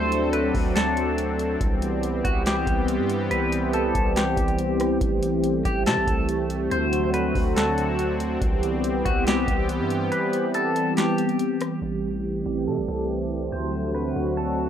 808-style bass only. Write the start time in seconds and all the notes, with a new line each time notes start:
Already playing: D2
0.55 D2
1.61 C2
2.25 C2
2.67 C2
2.99 G2
3.31 C2
3.95 C2
4.37 C2
5.01 A1
5.65 A1
5.86 C3
5.97 A1
6.07 C2
6.71 D2
7.35 D2
8.42 C2
9.06 C2
9.48 C2
9.80 G2
11.82 A1
12.46 A1
12.67 C3
12.78 A1
12.88 C2
13.52 D2
14.16 D2